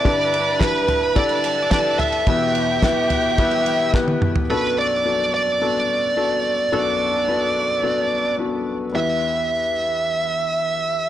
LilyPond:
<<
  \new Staff \with { instrumentName = "Violin section" } { \time 4/4 \key e \minor \tempo 4 = 108 <b' b''>2~ <b' b''>8 <a' a''>4. | <g' g''>1 | r1 | r1 |
r1 | }
  \new Staff \with { instrumentName = "Lead electric guitar" } { \time 4/4 \key e \minor d''4 b'4 d''4 d''8 e''8~ | e''2. r4 | b'8 d''4 d''2~ d''8~ | d''2. r4 |
e''1 | }
  \new Staff \with { instrumentName = "Felt piano" } { \time 4/4 \key e \minor <d' e' g' b'>4 <d' e' g' b'>4 <d' e' g' a'>4 <d' e' g' b'>4 | <b e' g' b'>4 <b e' g' b'>4 <b e' g' b'>4 <b e' g' b'>4 | <b d' fis' a'>4 <b d' fis' a'>4 <b d' fis' a'>4 <b d' fis' a'>4 | <b d' fis' a'>4 <b d' fis' b'>4 <b d' fis' a'>4 <b d' fis' b'>4 |
<b e' g' b'>1 | }
  \new Staff \with { instrumentName = "Felt piano" } { \clef bass \time 4/4 \key e \minor <g, d>1 | <e, b,>1 | <b,, fis,>1 | <b,, fis,>1 |
e,1 | }
  \new DrumStaff \with { instrumentName = "Drums" } \drummode { \time 4/4 <bd cymr>8 cymr8 <bd cymr sn>8 <cymr tomfh>8 <bd cymr>16 cymr16 cymr8 <bd cymr sn>8 <cymr tomfh>16 cymr16 | <bd cymr>8 cymr8 <bd cymr sn>8 <cymr tomfh>8 <bd cymr>16 cymr16 cymr8 <bd sn>16 tommh16 toml16 tomfh16 | r4 r4 r4 r4 | r4 r4 r4 r4 |
r4 r4 r4 r4 | }
>>